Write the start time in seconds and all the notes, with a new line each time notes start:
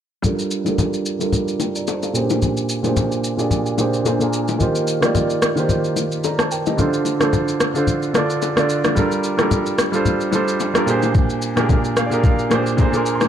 0.22 G3 D4 F4 A4 A#4, low conga, shaker
0.39 shaker
0.51 shaker
0.65 G3 D4 F4 A4 A#4, low bongo, shaker
0.78 high bongo, low conga, shaker
0.94 shaker
1.06 shaker
1.19 G3 D4 F4 A4 A#4, high bongo, shaker
1.32 low conga, shaker
1.48 shaker
1.60 A#4 G5, low bongo, shaker
1.75 D5 A#5, shaker
1.87 C5 A5, high bongo, shaker
2.03 A4 F5, high bongo, shaker
2.13 A#2 A#3 C#4 G4 G#4 C5, shaker
2.21 D4
2.30 low bongo, shaker
2.42 low conga, shaker
2.57 shaker
2.69 shaker
2.83 A#2 A#3 D4 G4 G#4 C5, low bongo, shaker
2.97 high bongo, low conga, shaker
3.12 shaker
3.24 shaker
3.37 A#2 A#3 D4 G4 G#4 D5, high bongo, shaker
3.51 low conga, shaker
3.66 shaker
3.77 A#2 A#3 D4 G4 G#4 C5, low bongo, shaker
3.94 shaker
4.04 A#2 A#3 D4 G#4 C5, high bongo, shaker
4.19 A#2 A#3 D4 G#4 A#4, high bongo, shaker
4.33 shaker
4.48 low bongo, shaker
4.59 D#3 A#3 F4 G4 C5, low conga, shaker
4.75 shaker
4.87 shaker
5.01 D#3 A#3 F4 G4 D5, cross-stick, low bongo, shaker
5.15 high bongo, low conga, shaker
5.30 shaker
5.42 cross-stick, shaker
5.56 D#3 A#3 F4 G4 C5, high bongo, shaker
5.69 low conga, shaker
5.84 shaker
5.96 low bongo, shaker
6.12 shaker
6.24 D5 A#5, high bongo, shaker
6.39 C5 A5, cross-stick, high bongo, shaker
6.51 A#4 G5, shaker
6.66 G4 D#5, low bongo, shaker
6.77 D3 D4 F4 A4 C5, low conga, shaker
6.93 shaker
7.05 low bongo, shaker
7.19 D3 D4 F4 A4 C5, cross-stick, low bongo, shaker
7.33 high bongo, low conga, shaker
7.48 shaker
7.60 cross-stick, shaker
7.74 D3 D4 F4 A4 C5, high bongo, shaker
7.87 low conga, shaker
8.02 shaker
8.13 D3 D4 F4 A4 D5, cross-stick, low bongo, shaker
8.30 shaker
8.42 high bongo, shaker
8.56 D3 D4 F4 A4 D5, cross-stick, high bongo, shaker
8.69 shaker
8.84 cross-stick, low bongo, shaker
8.95 G3 D4 F4 A4 A#4, low conga, shaker
9.12 shaker
9.24 shaker
9.37 G3 D4 F4 A4 A#4, cross-stick, low bongo, shaker
9.51 high bongo, low conga, shaker
9.66 shaker
9.78 cross-stick, shaker
9.92 G3 D4 F4 A4 C5, high bongo, shaker
10.05 low conga, shaker
10.21 shaker
10.31 G3 D4 F4 A4 C5, low bongo, shaker
10.48 shaker
10.60 high bongo, shaker
10.74 G3 D4 F4 A4 A#4, cross-stick, high bongo, shaker
10.86 A#2 A#3 D4 G4 G#4 C5, shaker
11.02 low bongo, shaker
11.15 kick, low conga, shaker
11.30 shaker
11.42 shaker
11.56 A#2 A#3 D4 G4 G#4 A#4, cross-stick, low bongo, shaker
11.69 kick, high bongo, low conga, shaker
11.84 shaker
11.97 F5, cross-stick, shaker
12.06 A#2 D5
12.11 A#3 D4 G4 G#4 A#4, high bongo, shaker
12.24 F5, kick, low conga, shaker
12.39 shaker
12.50 A#2 A#3 D4 G4 G#4 C5 G#5, cross-stick, low bongo, shaker
12.66 shaker
12.77 A#2 A#3 D4 G#4 C5 A#5, kick, high bongo, shaker
12.92 A#2 A#3 D4 G#4 A#4, high bongo, shaker
12.97 C6
13.06 shaker
13.15 C6
13.21 cross-stick, low bongo, shaker